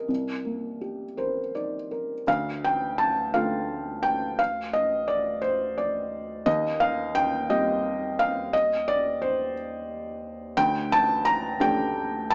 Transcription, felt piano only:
Already playing: A#3 G4 A#4 D#5
0.08 C2
0.45 A#3
0.81 G4
1.17 A#4 C5
1.55 D#4 D5
1.91 A#4
2.27 D2 F5
2.64 G5
2.98 A5
3.34 D3 A3 F4 F5
4.03 G5
4.39 F5
4.73 D#5
5.08 D5
5.42 C5
5.78 D5
6.46 D#2 D#5
6.80 F5
7.15 G5
7.50 G3 C4 G4 D#5
8.19 F5
8.53 D#5
8.88 D5
9.22 C5
10.57 D2 G5
10.92 A5
11.25 A#5
11.60 A3 D4 G4 G5
12.30 A5

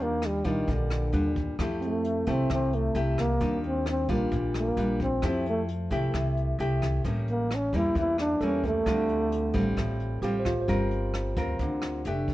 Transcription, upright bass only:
Already playing: D#2
0.45 A#1
0.68 A#1
1.13 D#2
1.59 F2
2.27 C2
2.50 C2
2.95 C2
3.41 D#2
4.09 A#1
4.32 A#1
4.77 A#1
5.23 F2
5.91 C2
6.13 C2
6.59 C2
7.05 A1
7.73 E2
7.95 E2
8.40 E2
8.86 D2
9.54 A1
9.77 A1
10.22 A1
10.68 G1
11.37 D2
11.59 D2
12.05 F1

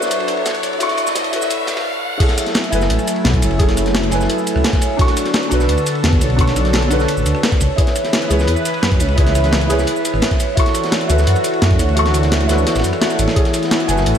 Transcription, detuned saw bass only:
2.73 F#1
2.90 A1
3.25 B1
3.42 F#1
4.12 F#1
4.56 C#2
5.52 B1
5.69 D2
6.04 E2
6.21 B1
6.91 B1
7.17 A1
7.26 D2
7.61 C#2
8.30 C#2
8.48 E2
8.83 F#2
9.00 C#2
9.70 C#2
10.14 G#1
11.10 D2
11.27 F#2
11.62 F#2
11.79 D2
12.49 D2
12.75 A1
12.84 F#2
13.19 A1
13.89 F#1
14.06 A1

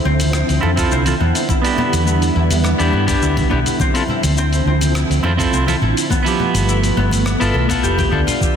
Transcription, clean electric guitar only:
0.61 C4 E4 F4 A4
0.76 C4 E4 F4 A4
1.05 C4 E4 F4 A4
1.62 B3 D4 E4
1.66 G4
2.78 B3 D4 E4 G4
3.07 B3 D4 E4 G4
3.50 B3 D4 E4 G4
3.94 C4 E4 F4 A4
5.23 C4 E4 F4 A4
5.37 C4 E4 F4 A4
5.67 C4 E4 F4 A4
6.23 F3 B3 E4
6.28 G4
7.40 B3 E4 F4 A4
7.68 B3 E4 F4 A4
8.10 B3 E4 F4 A4

